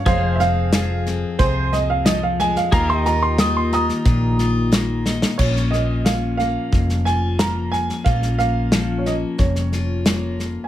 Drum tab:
CC |----------------|----------------|x---------------|----------------|
HH |----p-------p---|----p-------p---|----p-------p---|----p-------p---|
SD |o-o-o-o-o-o-o-oo|o-o-o-ooo-o-o-oo|ooo-o-o-ooo-o-oo|ooo-o-o-ooo-o-o-|
BD |o-------o-------|o-------o-------|o-------o-------|o-------o-------|